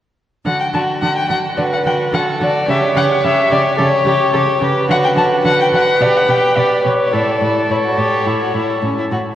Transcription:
0.45 D3 F#4 F#5
0.60 G5
0.73 D3 F#4 A5
1.01 D3 F#4 F#5
1.16 G5
1.30 D3 F#4 F#5
1.58 D3 F#4 B4 D5
1.74 F#5
1.86 D3 F#4 G5
2.13 D3 F#4 A4 F#5
2.40 D3 F#4 D5
2.68 C#3 G4 C#5 E5
2.95 C#3 G4 F#5
3.23 C#3 G4 E5
3.51 C#3 G4 D5
3.78 C#3 G4 A4 C#5
4.06 C#3 G4
4.33 C#3 G4 A4
4.61 C#3 G4 B4
4.89 D3 F#4 F#5
5.04 G5
5.16 D3 F#4 A5
5.44 D3 F#4 F#5
5.61 G5
5.72 D3 F#4 F#5
6.01 B2 G4 D5
6.17 F#5
6.29 B2 G4 G5
6.57 B2 G4 D5
6.85 B2 G4 C#5
7.13 A2 E4 A4 D5
7.42 A2 E4
7.70 A2 E4 C#5
7.84 F#4
7.98 A2 G4
8.26 A2 E4
8.42 F#4
8.54 A2 E4
8.83 A2 C#4
8.99 E4
9.11 A2 F#4

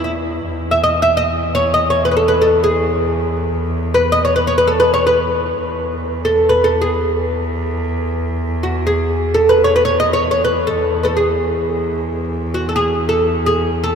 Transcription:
Already playing: E2
0.04 E4
0.47 E2
0.71 E5
0.84 D#5
1.02 E5
1.17 D#5
1.55 C#5
1.74 D#5
1.90 C#5
2.05 B4
2.11 B4
2.17 A4
2.28 B4
2.42 A4
2.64 G#4
3.94 B4
4.12 D#5
4.25 C#5
4.36 B4
4.47 C#5
4.58 B4
4.67 A4
4.80 B4
4.94 C#5
5.07 B4
5.59 E2
6.25 A4
6.49 B4
6.64 A4
6.81 G#4
8.63 F#4
8.87 G#4
9.34 A4
9.49 B4
9.64 C#5
9.76 B4
9.85 C#5
10.00 D#5
10.13 C#5
10.31 C#5
10.45 B4
10.67 A4
10.74 E2
11.03 A4 B4
11.17 G#4
12.54 F#4
12.69 A4
12.76 G#4
13.09 A4
13.46 G#4
13.84 A4

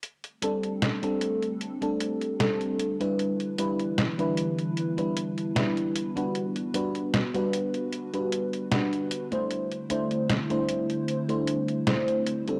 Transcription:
0.03 D3 G3 A3 C4 G4, closed hi-hat
0.24 closed hi-hat
0.42 G3 C4 D4 A4, closed hi-hat
0.63 closed hi-hat
0.82 snare, closed hi-hat
1.02 G3 C4 D4 A4, closed hi-hat
1.21 closed hi-hat
1.42 closed hi-hat
1.61 closed hi-hat
1.81 G3 C4 D4 A4, closed hi-hat
2.00 closed hi-hat
2.21 closed hi-hat
2.39 G3 C4 D4 A4, snare, closed hi-hat
2.61 closed hi-hat
2.79 closed hi-hat
3.00 G3 D4 E4 B4, closed hi-hat
3.19 E3 B3 E4, closed hi-hat
3.40 closed hi-hat
3.58 G3 D4 E4 B4, closed hi-hat
3.79 closed hi-hat
3.98 snare, closed hi-hat
4.18 G3 D4 E4 B4, closed hi-hat
4.37 closed hi-hat
4.59 closed hi-hat
4.77 closed hi-hat
4.97 G3 D4 E4 B4, closed hi-hat
5.17 closed hi-hat
5.38 closed hi-hat
5.55 G3 D4 E4 B4, snare, closed hi-hat
5.77 closed hi-hat
5.96 closed hi-hat
6.16 G3 D4 F#4 B4, closed hi-hat
6.35 G3 F#4, closed hi-hat
6.56 closed hi-hat
6.74 G3 D4 F#4 B4, closed hi-hat
6.95 closed hi-hat
7.14 snare, closed hi-hat
7.34 G3 D4 F#4 B4, closed hi-hat
7.53 closed hi-hat
7.74 closed hi-hat
7.92 closed hi-hat
8.13 G3 D4 F#4 B4, closed hi-hat
8.32 closed hi-hat
8.53 closed hi-hat
8.71 G3 D4 F#4 B4, snare, closed hi-hat
8.93 closed hi-hat
9.11 closed hi-hat
9.31 A3 D4 E4 C5, closed hi-hat
9.51 D3 A3 C4 E4, closed hi-hat
9.72 closed hi-hat
9.90 A3 D4 E4 C5, closed hi-hat
10.11 closed hi-hat
10.30 snare, closed hi-hat
10.50 A3 D4 E4 C5, closed hi-hat
10.69 closed hi-hat
10.90 closed hi-hat
11.08 closed hi-hat
11.29 A3 D4 E4 C5, closed hi-hat
11.47 closed hi-hat
11.68 closed hi-hat
11.87 A3 D4 E4 C5, snare, closed hi-hat
12.08 closed hi-hat
12.26 closed hi-hat
12.47 G3 C4 D4 A4, closed hi-hat

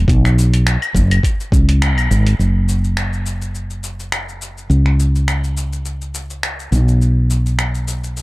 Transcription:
0.08 B1, kick, closed hi-hat, shaker
0.25 finger snap, shaker
0.39 shaker
0.54 closed hi-hat, shaker
0.67 finger snap, closed hi-hat, shaker
0.82 claves, shaker
0.95 F#1, kick, shaker
1.11 closed hi-hat, claves, shaker
1.23 kick, closed hi-hat, shaker
1.40 shaker
1.52 C#2, kick, shaker
1.69 closed hi-hat, shaker
1.82 finger snap, closed hi-hat, shaker
1.97 B1, claves, shaker
2.11 G#1, shaker
2.27 closed hi-hat, shaker
2.39 F#1, shaker
2.69 shaker
2.84 shaker
2.97 finger snap, shaker
3.13 shaker
3.26 shaker
3.42 shaker
3.55 shaker
3.70 shaker
3.84 shaker
4.00 shaker
4.12 finger snap, shaker
4.29 shaker
4.42 shaker
4.58 shaker
4.70 C#2, shaker
4.86 finger snap
5.00 shaker
5.15 shaker
5.28 finger snap, shaker
5.44 shaker
5.57 shaker
5.73 shaker
5.85 shaker
6.01 shaker
6.15 shaker
6.30 shaker
6.43 finger snap, shaker
6.59 shaker
6.72 B1, shaker
6.88 shaker
7.01 shaker
7.30 shaker
7.46 shaker
7.59 finger snap, shaker
7.75 shaker
7.88 shaker
8.04 shaker
8.17 shaker

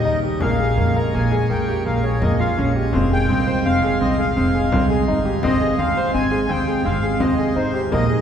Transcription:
Already playing: C#3 G3 D#4 D#5
0.04 D#2 D#4
0.23 G4, frame drum
0.40 A#1 A#2 G#3 A#3 C#4 F5, frame drum
0.60 G#4
0.77 F2 A#3
0.96 A#4 A#5, frame drum
1.14 A#1 A#3 G#5
1.31 G#4, frame drum
1.50 F2 A#3 G5
1.68 G4
1.86 A#1 A#3 F5
2.03 G#4 C#5
2.20 F2 A#3 D#5, frame drum
2.39 F4 F5
2.58 A#1 C#4, frame drum
2.76 G4, frame drum
2.93 F1 D#3 C4 F4, frame drum
3.11 G#4 G5
3.29 C2 C4
3.47 C5, frame drum
3.65 F1 C4 F5
3.82 G#4, frame drum
4.01 C2 C4 D#5
4.18 G#4 F5
4.36 F1 C4
4.55 G#4
4.72 C2 C4, frame drum
4.90 G#4
5.08 G1 D#4, frame drum
5.25 G4, frame drum
5.43 G#1 C3 C4 D#5, frame drum
5.61 G#4
5.78 D#2 C4 F5
5.97 C5, frame drum
6.14 G#1 C4 G#5
6.31 G#4, frame drum
6.49 D#2 C4 G5
6.68 G#4
6.85 G#1 C4 F5
7.03 G#4
7.20 D#2 C4 D#5, frame drum
7.38 G#4
7.56 G#1 D#4 C5, frame drum
7.74 G4, frame drum
7.92 A#1 A#2 A#3 D#4 D#5, frame drum
8.10 G#4, frame drum

